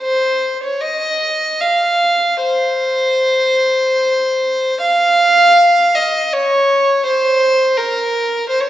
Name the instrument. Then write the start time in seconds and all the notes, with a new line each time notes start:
violin
0.01 C5
0.64 C#5
0.81 D#5
1.60 F5
2.42 C5
4.81 F5
5.95 D#5
6.33 C#5
7.06 C5
7.77 A#4
8.49 C5
8.60 C#5